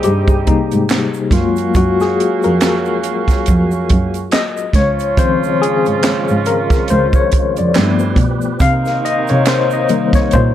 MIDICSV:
0, 0, Header, 1, 6, 480
1, 0, Start_track
1, 0, Tempo, 857143
1, 978, Time_signature, 4, 2, 24, 8
1, 5905, End_track
2, 0, Start_track
2, 0, Title_t, "Tine electric piano"
2, 0, Program_c, 0, 4
2, 0, Control_c, 0, 64, 127
2, 0, Note_on_c, 0, 48, 52
2, 0, Note_on_c, 0, 55, 46
2, 0, Note_on_c, 0, 58, 59
2, 0, Note_on_c, 0, 68, 83
2, 0, Note_on_c, 0, 72, 98
2, 23, Note_on_c, 0, 67, 86
2, 262, Note_off_c, 0, 48, 0
2, 262, Note_on_c, 0, 48, 49
2, 263, Note_off_c, 0, 55, 0
2, 263, Note_on_c, 0, 55, 43
2, 264, Note_off_c, 0, 58, 0
2, 264, Note_on_c, 0, 58, 53
2, 264, Note_on_c, 0, 63, 86
2, 268, Note_off_c, 0, 67, 0
2, 478, Note_off_c, 0, 48, 0
2, 478, Note_off_c, 0, 55, 0
2, 479, Note_off_c, 0, 58, 0
2, 738, Note_on_c, 0, 54, 54
2, 741, Note_on_c, 0, 56, 52
2, 744, Note_on_c, 0, 58, 59
2, 744, Note_on_c, 0, 65, 85
2, 745, Control_c, 0, 64, 0
2, 747, Note_off_c, 0, 68, 0
2, 748, Note_off_c, 0, 72, 0
2, 756, Note_off_c, 0, 63, 0
2, 856, Control_c, 0, 64, 127
2, 989, Note_off_c, 0, 65, 0
2, 989, Note_on_c, 0, 66, 89
2, 1114, Note_off_c, 0, 66, 0
2, 1128, Note_on_c, 0, 68, 82
2, 1346, Note_off_c, 0, 68, 0
2, 1368, Note_on_c, 0, 70, 74
2, 1436, Note_off_c, 0, 54, 0
2, 1437, Note_off_c, 0, 56, 0
2, 1439, Note_off_c, 0, 58, 0
2, 1586, Note_off_c, 0, 70, 0
2, 2422, Note_on_c, 0, 75, 101
2, 2663, Note_on_c, 0, 73, 107
2, 2666, Control_c, 0, 64, 0
2, 2667, Note_off_c, 0, 75, 0
2, 2756, Control_c, 0, 64, 127
2, 2884, Note_off_c, 0, 73, 0
2, 2900, Note_on_c, 0, 51, 54
2, 2904, Note_on_c, 0, 53, 50
2, 2905, Note_on_c, 0, 72, 108
2, 2907, Note_on_c, 0, 60, 63
2, 3145, Note_on_c, 0, 68, 98
2, 3149, Note_off_c, 0, 72, 0
2, 3597, Note_off_c, 0, 51, 0
2, 3599, Note_off_c, 0, 53, 0
2, 3600, Note_off_c, 0, 60, 0
2, 3600, Note_off_c, 0, 68, 0
2, 3622, Note_on_c, 0, 70, 84
2, 3866, Note_on_c, 0, 72, 94
2, 3867, Note_off_c, 0, 70, 0
2, 4006, Note_off_c, 0, 72, 0
2, 4008, Note_on_c, 0, 73, 88
2, 4246, Note_on_c, 0, 74, 72
2, 4250, Note_off_c, 0, 73, 0
2, 4344, Note_on_c, 0, 53, 62
2, 4345, Control_c, 0, 64, 0
2, 4348, Note_on_c, 0, 57, 58
2, 4349, Note_on_c, 0, 59, 73
2, 4443, Control_c, 0, 64, 127
2, 4466, Note_off_c, 0, 74, 0
2, 4799, Note_off_c, 0, 53, 0
2, 4801, Note_off_c, 0, 57, 0
2, 4802, Note_off_c, 0, 59, 0
2, 4824, Note_on_c, 0, 77, 109
2, 4826, Control_c, 0, 64, 0
2, 4909, Control_c, 0, 64, 127
2, 5068, Note_off_c, 0, 77, 0
2, 5068, Note_on_c, 0, 75, 107
2, 5206, Note_off_c, 0, 75, 0
2, 5206, Note_on_c, 0, 73, 88
2, 5306, Note_off_c, 0, 73, 0
2, 5309, Note_on_c, 0, 72, 92
2, 5434, Note_off_c, 0, 72, 0
2, 5452, Note_on_c, 0, 75, 82
2, 5540, Note_on_c, 0, 51, 57
2, 5542, Note_on_c, 0, 55, 53
2, 5545, Note_on_c, 0, 58, 70
2, 5686, Note_on_c, 0, 73, 86
2, 5692, Note_off_c, 0, 75, 0
2, 5785, Note_off_c, 0, 73, 0
2, 5787, Note_on_c, 0, 72, 94
2, 5905, Note_off_c, 0, 51, 0
2, 5905, Note_off_c, 0, 55, 0
2, 5905, Note_off_c, 0, 58, 0
2, 5905, Note_off_c, 0, 72, 0
2, 5905, End_track
3, 0, Start_track
3, 0, Title_t, "Horn section"
3, 0, Program_c, 1, 61
3, 0, Note_on_c, 1, 55, 74
3, 0, Note_on_c, 1, 60, 60
3, 0, Note_on_c, 1, 63, 67
3, 0, Note_on_c, 1, 67, 80
3, 475, Note_off_c, 1, 55, 0
3, 475, Note_off_c, 1, 60, 0
3, 475, Note_off_c, 1, 67, 0
3, 476, Note_off_c, 1, 63, 0
3, 738, Note_on_c, 1, 54, 67
3, 738, Note_on_c, 1, 58, 68
3, 738, Note_on_c, 1, 66, 73
3, 739, Note_on_c, 1, 61, 67
3, 2396, Note_off_c, 1, 54, 0
3, 2396, Note_off_c, 1, 58, 0
3, 2396, Note_off_c, 1, 61, 0
3, 2396, Note_off_c, 1, 66, 0
3, 2660, Note_on_c, 1, 61, 70
3, 2660, Note_on_c, 1, 65, 70
3, 2661, Note_on_c, 1, 53, 69
3, 4077, Note_off_c, 1, 53, 0
3, 4077, Note_off_c, 1, 61, 0
3, 4077, Note_off_c, 1, 65, 0
3, 4336, Note_on_c, 1, 52, 64
3, 4336, Note_on_c, 1, 64, 70
3, 4337, Note_on_c, 1, 57, 57
3, 4337, Note_on_c, 1, 60, 66
3, 4573, Note_off_c, 1, 52, 0
3, 4573, Note_off_c, 1, 57, 0
3, 4573, Note_off_c, 1, 60, 0
3, 4573, Note_off_c, 1, 64, 0
3, 4816, Note_on_c, 1, 58, 64
3, 4817, Note_on_c, 1, 51, 76
3, 4817, Note_on_c, 1, 60, 73
3, 4817, Note_on_c, 1, 63, 83
3, 5905, Note_off_c, 1, 51, 0
3, 5905, Note_off_c, 1, 58, 0
3, 5905, Note_off_c, 1, 60, 0
3, 5905, Note_off_c, 1, 63, 0
3, 5905, End_track
4, 0, Start_track
4, 0, Title_t, "Tonewheel organ"
4, 0, Program_c, 2, 16
4, 2896, Note_on_c, 2, 49, 63
4, 2896, Note_on_c, 2, 65, 68
4, 2897, Note_on_c, 2, 56, 52
4, 4323, Note_off_c, 2, 49, 0
4, 4323, Note_off_c, 2, 56, 0
4, 4323, Note_off_c, 2, 65, 0
4, 4339, Note_on_c, 2, 67, 73
4, 4341, Note_on_c, 2, 53, 66
4, 4342, Note_on_c, 2, 71, 55
4, 4813, Note_on_c, 2, 48, 61
4, 4814, Note_off_c, 2, 67, 0
4, 4814, Note_on_c, 2, 63, 69
4, 4815, Note_off_c, 2, 53, 0
4, 4815, Note_off_c, 2, 71, 0
4, 4815, Note_on_c, 2, 58, 60
4, 5905, Note_off_c, 2, 48, 0
4, 5905, Note_off_c, 2, 58, 0
4, 5905, Note_off_c, 2, 63, 0
4, 5905, End_track
5, 0, Start_track
5, 0, Title_t, "Cello"
5, 0, Program_c, 3, 42
5, 33, Note_on_c, 3, 43, 92
5, 239, Note_off_c, 3, 43, 0
5, 408, Note_on_c, 3, 44, 75
5, 493, Note_off_c, 3, 44, 0
5, 740, Note_on_c, 3, 42, 82
5, 952, Note_off_c, 3, 42, 0
5, 986, Note_on_c, 3, 42, 91
5, 1195, Note_off_c, 3, 42, 0
5, 1374, Note_on_c, 3, 41, 79
5, 1792, Note_off_c, 3, 41, 0
5, 1956, Note_on_c, 3, 41, 93
5, 2161, Note_off_c, 3, 41, 0
5, 2193, Note_on_c, 3, 42, 93
5, 2310, Note_off_c, 3, 42, 0
5, 2658, Note_on_c, 3, 37, 89
5, 3207, Note_off_c, 3, 37, 0
5, 3292, Note_on_c, 3, 44, 50
5, 3360, Note_off_c, 3, 44, 0
5, 3394, Note_on_c, 3, 44, 43
5, 3490, Note_off_c, 3, 44, 0
5, 3531, Note_on_c, 3, 44, 91
5, 3738, Note_off_c, 3, 44, 0
5, 3872, Note_on_c, 3, 37, 99
5, 4079, Note_off_c, 3, 37, 0
5, 4251, Note_on_c, 3, 41, 80
5, 4335, Note_off_c, 3, 41, 0
5, 4352, Note_on_c, 3, 43, 96
5, 4559, Note_off_c, 3, 43, 0
5, 4578, Note_on_c, 3, 47, 81
5, 4791, Note_off_c, 3, 47, 0
5, 4823, Note_on_c, 3, 48, 105
5, 5034, Note_off_c, 3, 48, 0
5, 5213, Note_on_c, 3, 48, 89
5, 5632, Note_off_c, 3, 48, 0
5, 5795, Note_on_c, 3, 46, 124
5, 5905, Note_off_c, 3, 46, 0
5, 5905, End_track
6, 0, Start_track
6, 0, Title_t, "Drums"
6, 17, Note_on_c, 9, 42, 61
6, 22, Note_on_c, 9, 82, 59
6, 73, Note_off_c, 9, 42, 0
6, 78, Note_off_c, 9, 82, 0
6, 155, Note_on_c, 9, 36, 98
6, 157, Note_on_c, 9, 82, 42
6, 211, Note_off_c, 9, 36, 0
6, 213, Note_off_c, 9, 82, 0
6, 263, Note_on_c, 9, 42, 63
6, 266, Note_on_c, 9, 36, 95
6, 319, Note_off_c, 9, 42, 0
6, 322, Note_off_c, 9, 36, 0
6, 400, Note_on_c, 9, 42, 34
6, 401, Note_on_c, 9, 82, 45
6, 456, Note_off_c, 9, 42, 0
6, 457, Note_off_c, 9, 82, 0
6, 499, Note_on_c, 9, 26, 50
6, 499, Note_on_c, 9, 82, 50
6, 500, Note_on_c, 9, 42, 60
6, 509, Note_on_c, 9, 38, 105
6, 509, Note_on_c, 9, 39, 86
6, 555, Note_off_c, 9, 26, 0
6, 555, Note_off_c, 9, 82, 0
6, 556, Note_off_c, 9, 42, 0
6, 565, Note_off_c, 9, 38, 0
6, 565, Note_off_c, 9, 39, 0
6, 638, Note_on_c, 9, 82, 46
6, 694, Note_off_c, 9, 82, 0
6, 733, Note_on_c, 9, 36, 93
6, 739, Note_on_c, 9, 42, 66
6, 749, Note_on_c, 9, 38, 34
6, 789, Note_off_c, 9, 36, 0
6, 795, Note_off_c, 9, 42, 0
6, 805, Note_off_c, 9, 38, 0
6, 876, Note_on_c, 9, 82, 49
6, 885, Note_on_c, 9, 42, 35
6, 932, Note_off_c, 9, 82, 0
6, 941, Note_off_c, 9, 42, 0
6, 976, Note_on_c, 9, 82, 68
6, 979, Note_on_c, 9, 36, 102
6, 986, Note_on_c, 9, 42, 70
6, 1032, Note_off_c, 9, 82, 0
6, 1035, Note_off_c, 9, 36, 0
6, 1042, Note_off_c, 9, 42, 0
6, 1121, Note_on_c, 9, 82, 47
6, 1126, Note_on_c, 9, 38, 33
6, 1177, Note_off_c, 9, 82, 0
6, 1182, Note_off_c, 9, 38, 0
6, 1233, Note_on_c, 9, 42, 65
6, 1289, Note_off_c, 9, 42, 0
6, 1357, Note_on_c, 9, 82, 38
6, 1366, Note_on_c, 9, 42, 36
6, 1413, Note_off_c, 9, 82, 0
6, 1422, Note_off_c, 9, 42, 0
6, 1459, Note_on_c, 9, 42, 68
6, 1462, Note_on_c, 9, 26, 66
6, 1462, Note_on_c, 9, 82, 69
6, 1466, Note_on_c, 9, 39, 83
6, 1467, Note_on_c, 9, 38, 125
6, 1515, Note_off_c, 9, 42, 0
6, 1518, Note_off_c, 9, 26, 0
6, 1518, Note_off_c, 9, 82, 0
6, 1522, Note_off_c, 9, 39, 0
6, 1523, Note_off_c, 9, 38, 0
6, 1598, Note_on_c, 9, 82, 41
6, 1654, Note_off_c, 9, 82, 0
6, 1700, Note_on_c, 9, 42, 71
6, 1700, Note_on_c, 9, 82, 47
6, 1756, Note_off_c, 9, 42, 0
6, 1756, Note_off_c, 9, 82, 0
6, 1835, Note_on_c, 9, 36, 79
6, 1838, Note_on_c, 9, 42, 32
6, 1845, Note_on_c, 9, 38, 34
6, 1845, Note_on_c, 9, 82, 49
6, 1891, Note_off_c, 9, 36, 0
6, 1894, Note_off_c, 9, 42, 0
6, 1901, Note_off_c, 9, 38, 0
6, 1901, Note_off_c, 9, 82, 0
6, 1937, Note_on_c, 9, 42, 64
6, 1945, Note_on_c, 9, 82, 66
6, 1949, Note_on_c, 9, 36, 81
6, 1993, Note_off_c, 9, 42, 0
6, 2001, Note_off_c, 9, 82, 0
6, 2005, Note_off_c, 9, 36, 0
6, 2079, Note_on_c, 9, 82, 45
6, 2135, Note_off_c, 9, 82, 0
6, 2181, Note_on_c, 9, 42, 71
6, 2185, Note_on_c, 9, 36, 95
6, 2237, Note_off_c, 9, 42, 0
6, 2241, Note_off_c, 9, 36, 0
6, 2318, Note_on_c, 9, 42, 32
6, 2323, Note_on_c, 9, 82, 47
6, 2374, Note_off_c, 9, 42, 0
6, 2379, Note_off_c, 9, 82, 0
6, 2416, Note_on_c, 9, 42, 67
6, 2423, Note_on_c, 9, 26, 49
6, 2423, Note_on_c, 9, 82, 47
6, 2425, Note_on_c, 9, 38, 112
6, 2425, Note_on_c, 9, 39, 96
6, 2472, Note_off_c, 9, 42, 0
6, 2479, Note_off_c, 9, 26, 0
6, 2479, Note_off_c, 9, 82, 0
6, 2481, Note_off_c, 9, 38, 0
6, 2481, Note_off_c, 9, 39, 0
6, 2560, Note_on_c, 9, 82, 50
6, 2616, Note_off_c, 9, 82, 0
6, 2651, Note_on_c, 9, 36, 95
6, 2656, Note_on_c, 9, 42, 63
6, 2666, Note_on_c, 9, 38, 42
6, 2707, Note_off_c, 9, 36, 0
6, 2712, Note_off_c, 9, 42, 0
6, 2722, Note_off_c, 9, 38, 0
6, 2796, Note_on_c, 9, 82, 46
6, 2802, Note_on_c, 9, 42, 35
6, 2852, Note_off_c, 9, 82, 0
6, 2858, Note_off_c, 9, 42, 0
6, 2897, Note_on_c, 9, 36, 107
6, 2900, Note_on_c, 9, 82, 64
6, 2904, Note_on_c, 9, 42, 77
6, 2953, Note_off_c, 9, 36, 0
6, 2956, Note_off_c, 9, 82, 0
6, 2960, Note_off_c, 9, 42, 0
6, 3043, Note_on_c, 9, 82, 50
6, 3099, Note_off_c, 9, 82, 0
6, 3152, Note_on_c, 9, 42, 59
6, 3208, Note_off_c, 9, 42, 0
6, 3279, Note_on_c, 9, 82, 40
6, 3283, Note_on_c, 9, 42, 36
6, 3335, Note_off_c, 9, 82, 0
6, 3339, Note_off_c, 9, 42, 0
6, 3375, Note_on_c, 9, 42, 76
6, 3381, Note_on_c, 9, 26, 66
6, 3381, Note_on_c, 9, 82, 61
6, 3382, Note_on_c, 9, 39, 96
6, 3383, Note_on_c, 9, 38, 116
6, 3431, Note_off_c, 9, 42, 0
6, 3437, Note_off_c, 9, 26, 0
6, 3437, Note_off_c, 9, 82, 0
6, 3438, Note_off_c, 9, 39, 0
6, 3439, Note_off_c, 9, 38, 0
6, 3518, Note_on_c, 9, 82, 50
6, 3574, Note_off_c, 9, 82, 0
6, 3614, Note_on_c, 9, 82, 41
6, 3617, Note_on_c, 9, 42, 74
6, 3670, Note_off_c, 9, 82, 0
6, 3673, Note_off_c, 9, 42, 0
6, 3753, Note_on_c, 9, 36, 93
6, 3754, Note_on_c, 9, 42, 35
6, 3760, Note_on_c, 9, 82, 50
6, 3761, Note_on_c, 9, 38, 35
6, 3809, Note_off_c, 9, 36, 0
6, 3810, Note_off_c, 9, 42, 0
6, 3816, Note_off_c, 9, 82, 0
6, 3817, Note_off_c, 9, 38, 0
6, 3852, Note_on_c, 9, 42, 66
6, 3858, Note_on_c, 9, 82, 57
6, 3908, Note_off_c, 9, 42, 0
6, 3914, Note_off_c, 9, 82, 0
6, 3993, Note_on_c, 9, 36, 92
6, 3994, Note_on_c, 9, 82, 43
6, 4049, Note_off_c, 9, 36, 0
6, 4050, Note_off_c, 9, 82, 0
6, 4097, Note_on_c, 9, 42, 70
6, 4103, Note_on_c, 9, 36, 92
6, 4153, Note_off_c, 9, 42, 0
6, 4159, Note_off_c, 9, 36, 0
6, 4237, Note_on_c, 9, 42, 35
6, 4237, Note_on_c, 9, 82, 53
6, 4293, Note_off_c, 9, 42, 0
6, 4293, Note_off_c, 9, 82, 0
6, 4336, Note_on_c, 9, 42, 65
6, 4337, Note_on_c, 9, 26, 50
6, 4337, Note_on_c, 9, 82, 55
6, 4345, Note_on_c, 9, 38, 105
6, 4345, Note_on_c, 9, 39, 89
6, 4392, Note_off_c, 9, 42, 0
6, 4393, Note_off_c, 9, 26, 0
6, 4393, Note_off_c, 9, 82, 0
6, 4401, Note_off_c, 9, 38, 0
6, 4401, Note_off_c, 9, 39, 0
6, 4475, Note_on_c, 9, 82, 54
6, 4531, Note_off_c, 9, 82, 0
6, 4571, Note_on_c, 9, 36, 105
6, 4577, Note_on_c, 9, 42, 70
6, 4627, Note_off_c, 9, 36, 0
6, 4633, Note_off_c, 9, 42, 0
6, 4712, Note_on_c, 9, 82, 48
6, 4768, Note_off_c, 9, 82, 0
6, 4815, Note_on_c, 9, 82, 70
6, 4817, Note_on_c, 9, 36, 105
6, 4825, Note_on_c, 9, 42, 81
6, 4871, Note_off_c, 9, 82, 0
6, 4873, Note_off_c, 9, 36, 0
6, 4881, Note_off_c, 9, 42, 0
6, 4958, Note_on_c, 9, 82, 47
6, 4964, Note_on_c, 9, 38, 36
6, 5014, Note_off_c, 9, 82, 0
6, 5020, Note_off_c, 9, 38, 0
6, 5071, Note_on_c, 9, 42, 63
6, 5127, Note_off_c, 9, 42, 0
6, 5194, Note_on_c, 9, 82, 41
6, 5203, Note_on_c, 9, 42, 37
6, 5250, Note_off_c, 9, 82, 0
6, 5259, Note_off_c, 9, 42, 0
6, 5295, Note_on_c, 9, 42, 71
6, 5296, Note_on_c, 9, 26, 60
6, 5296, Note_on_c, 9, 82, 68
6, 5302, Note_on_c, 9, 39, 90
6, 5303, Note_on_c, 9, 38, 127
6, 5351, Note_off_c, 9, 42, 0
6, 5352, Note_off_c, 9, 26, 0
6, 5352, Note_off_c, 9, 82, 0
6, 5358, Note_off_c, 9, 39, 0
6, 5359, Note_off_c, 9, 38, 0
6, 5434, Note_on_c, 9, 82, 51
6, 5490, Note_off_c, 9, 82, 0
6, 5536, Note_on_c, 9, 82, 44
6, 5539, Note_on_c, 9, 42, 71
6, 5592, Note_off_c, 9, 82, 0
6, 5595, Note_off_c, 9, 42, 0
6, 5673, Note_on_c, 9, 36, 97
6, 5676, Note_on_c, 9, 42, 36
6, 5677, Note_on_c, 9, 82, 47
6, 5683, Note_on_c, 9, 38, 35
6, 5729, Note_off_c, 9, 36, 0
6, 5732, Note_off_c, 9, 42, 0
6, 5733, Note_off_c, 9, 82, 0
6, 5739, Note_off_c, 9, 38, 0
6, 5774, Note_on_c, 9, 42, 64
6, 5779, Note_on_c, 9, 82, 69
6, 5787, Note_on_c, 9, 36, 93
6, 5830, Note_off_c, 9, 42, 0
6, 5835, Note_off_c, 9, 82, 0
6, 5843, Note_off_c, 9, 36, 0
6, 5905, End_track
0, 0, End_of_file